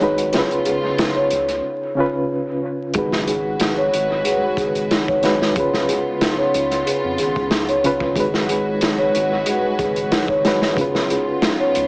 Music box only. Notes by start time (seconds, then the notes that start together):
Already playing: C#5
0.33 G#4
0.66 G#4
0.98 D#4
1.16 C#5
2.95 G#4
3.27 G#4
3.60 D#4
3.78 C#5
4.25 G#4
4.58 G#4
4.91 D#4
5.08 C#5
5.56 G#4
5.88 G#4
6.21 D#4
6.38 C#5
6.86 G#4
7.19 G#4
7.51 D#4
7.69 C#5
8.16 G#4
8.49 G#4
8.81 D#4
8.98 C#5
9.46 G#4
9.79 G#4
10.11 D#4
10.29 C#5
10.76 G#4
11.10 G#4
11.42 D#4
11.60 C#5